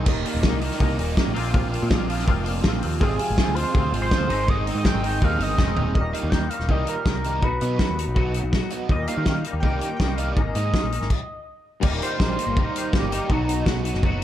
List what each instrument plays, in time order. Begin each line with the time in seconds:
0.06 picked electric bass D#1, clean electric guitar D#2 A#2 D#3 A#3 D#4, kick, crash
0.24 clean electric guitar D#3 A#3 D#4, open hi-hat
0.34 picked electric bass D#1
0.43 clean electric guitar A#2 D#3 A#3 D#4, kick, snare
0.52 picked electric bass C2
0.61 overdriven electric guitar D#2 A#2, clean electric guitar D#3 A#3 D#4, open hi-hat
0.71 snare
0.79 picked electric bass C2, clean electric guitar D#2 A#2 D#3 A#3 D#4, kick
0.97 picked electric bass D#1, clean electric guitar D#3 A#3 D#4, open hi-hat
1.16 overdriven electric guitar D#2, clean electric guitar A#2 D#3 A#3 D#4, kick, snare
1.27 picked electric bass A1
1.34 picked electric bass A#1, clean electric guitar A#2 F3 A#3 C4 F4, open hi-hat
1.52 clean electric guitar A#2 F3 A#3 C4 F4, kick
1.70 clean electric guitar A#3 C4 F4, open hi-hat
1.82 picked electric bass A#2
1.89 clean electric guitar F3 A#3 C4 F4, kick, snare
2.00 picked electric bass A#1
2.07 overdriven electric guitar A#2 F3, clean electric guitar A#3 C4 F4, open hi-hat
2.19 snare
2.25 picked electric bass F1, clean electric guitar A#2 F3 A#3 C4 F4, kick
2.44 clean electric guitar A#3 C4 F4, open hi-hat
2.62 picked electric bass A#1, overdriven electric guitar A#2, clean electric guitar F3 A#3 C4 F4, kick, snare
2.83 picked electric bass D#2, overdriven electric guitar A#3 C4 F4, open hi-hat
2.99 picked electric bass G#1, clean electric guitar F2 C3 F3 G#3 C4 F4, analog synth lead G#4, glockenspiel G#5, kick
3.18 clean electric guitar F3 G#3 C4 F4, open hi-hat
3.30 picked electric bass G#1
3.37 clean electric guitar F3 G#3 C4 F4, kick, snare
3.48 picked electric bass D2
3.54 clean electric guitar F3 G#3 C4 F4, analog synth lead C5, glockenspiel C6, open hi-hat
3.59 overdriven electric guitar F2 C3
3.73 picked electric bass D2, clean electric guitar F2 C3 F3 G#3 C4 F4, kick
3.92 picked electric bass G#1, clean electric guitar F3 G#3 C4 F4, open hi-hat
4.02 analog synth lead C5, glockenspiel C6
4.11 overdriven electric guitar F2 C3, clean electric guitar F3 G#3 C4 F4, kick, snare
4.20 picked electric bass D2
4.29 picked electric bass G#1, clean electric guitar G#2 D#3 G#3 C4 D#4, open hi-hat
4.47 clean electric guitar G#2 D#3 G#3 C4 D#4, analog synth lead D#5, glockenspiel D#6, kick
4.65 clean electric guitar G#3 C4 D#4, open hi-hat
4.75 picked electric bass G#2, analog synth lead D#5
4.80 clean electric guitar D#3, glockenspiel D#6
4.84 clean electric guitar G#3 C4 D#4, analog synth lead G5, glockenspiel G6, kick, snare
4.94 picked electric bass G#1
5.03 overdriven electric guitar G#2 D#3, clean electric guitar G#3 C4 D#4, open hi-hat
5.20 picked electric bass D#2, clean electric guitar G#2 D#3 G#3 C4 D#4, analog synth lead F5, kick
5.25 glockenspiel F6
5.38 picked electric bass G1, clean electric guitar G#3 C4 D#4, open hi-hat
5.42 analog synth lead D#5, glockenspiel D#6
5.56 picked electric bass F1, overdriven electric guitar G#2, clean electric guitar D#3 G#3 C4 D#4, kick, snare
5.76 picked electric bass D#1, overdriven electric guitar G#3 C4 D#4, floor tom
5.94 picked electric bass D#1, clean electric guitar D#2 A#2 D#3 G3 A#3 D#4, analog synth lead D#5, kick
6.12 clean electric guitar D#3 G3 A#3 D#4, analog synth lead F5, closed hi-hat
6.23 picked electric bass D#2
6.30 picked electric bass D#2, clean electric guitar D#3 G3 A#3 D#4, analog synth lead G5, kick, snare
6.48 clean electric guitar D#3 G3 A#3 D#4, analog synth lead F5, closed hi-hat
6.59 picked electric bass D#1, snare
6.68 picked electric bass C2, clean electric guitar D#2 A#2 D#3 G3 A#3 D#4, analog synth lead D#5, kick
6.85 clean electric guitar D#3 G3 A#3 D#4, closed hi-hat
6.89 analog synth lead A#4
7.04 picked electric bass C2, clean electric guitar D#3 G3 A#3 D#4, kick, snare
7.24 overdriven electric guitar D#3 G3 A#3 D#4, closed hi-hat
7.40 picked electric bass B1, clean electric guitar B2 F#3 B3 D#4 F#4, analog synth lead B4, kick
7.58 picked electric bass B2, clean electric guitar B3 D#4 F#4, closed hi-hat
7.63 overdriven electric guitar F#3
7.77 clean electric guitar F#3 B3 D#4 F#4, kick, snare
7.90 picked electric bass D#2
7.96 clean electric guitar B3 D#4 F#4, closed hi-hat
8.08 picked electric bass B1
8.14 clean electric guitar B2 F#3 B3 D#4 F#4, kick
8.33 clean electric guitar B3 D#4 F#4, closed hi-hat
8.43 picked electric bass B1
8.50 clean electric guitar F#3 B3 D#4 F#4, kick, snare
8.70 overdriven electric guitar F#3 B3 D#4 F#4, closed hi-hat
8.88 clean electric guitar D#2 A#2 D#3 G3 A#3 D#4, picked electric bass D#2, analog synth lead D#5, kick
9.07 clean electric guitar D#3 G3 A#3 D#4, analog synth lead F5, closed hi-hat
9.17 picked electric bass D#3
9.25 clean electric guitar D#3 G3 A#3 D#4, picked electric bass D#3, kick, snare
9.44 clean electric guitar D#3 G3 A#3 D#4, closed hi-hat
9.53 picked electric bass D#2
9.60 picked electric bass C2, clean electric guitar D#2 A#2 D#3 G3 A#3 D#4, analog synth lead G5, kick
9.79 clean electric guitar A#3 D#4, analog synth lead G5, closed hi-hat
9.83 clean electric guitar D#3 G3
9.96 picked electric bass C2, clean electric guitar D#3 G3, analog synth lead G5, kick, snare
10.01 clean electric guitar A#3 D#4
10.15 overdriven electric guitar A#3 D#4, analog synth lead F5, closed hi-hat
10.19 overdriven electric guitar D#3 G3
10.32 clean electric guitar G#2, analog synth lead D#5
10.37 picked electric bass G#1, clean electric guitar D#3 G#3 A#3 D#4, kick
10.55 picked electric bass G#2, overdriven electric guitar D#3, clean electric guitar G#3 A#3 D#4, closed hi-hat
10.73 clean electric guitar D#3 G#3 A#3 D#4, kick, snare
10.83 picked electric bass A#1
10.91 clean electric guitar G#3 A#3 D#4, closed hi-hat
11.01 picked electric bass G#1, snare
11.10 kick, crash
11.80 picked electric bass D#1, clean electric guitar D#2 A#2 D#3 G3 A#3 D#4, kick, crash
12.02 analog synth lead C5, closed hi-hat
12.17 picked electric bass A#1, clean electric guitar D#2 A#2 D#3 G3 A#3 D#4, kick, snare
12.37 clean electric guitar D#3 G3 A#3 D#4, closed hi-hat
12.47 picked electric bass G1
12.56 clean electric guitar D#3 G3 A#3 D#4, kick
12.76 analog synth lead C5, closed hi-hat
12.92 clean electric guitar D#3 G3 A#3 D#4, kick, snare
12.97 analog synth lead G4
13.02 picked electric bass G1
13.11 clean electric guitar D#3 G3 A#3 D#4, analog synth lead G4, closed hi-hat
13.28 picked electric bass B1, clean electric guitar B2 F#3 B3 D#4 F#4, analog synth lead D#4, kick
13.45 analog synth lead D#4
13.49 closed hi-hat
13.65 picked electric bass B1, clean electric guitar B2 F#3 B3 D#4 F#4, kick, snare
13.83 clean electric guitar B3 D#4 F#4, closed hi-hat
13.94 picked electric bass F#1, snare
14.02 clean electric guitar F#3 B3 D#4 F#4, kick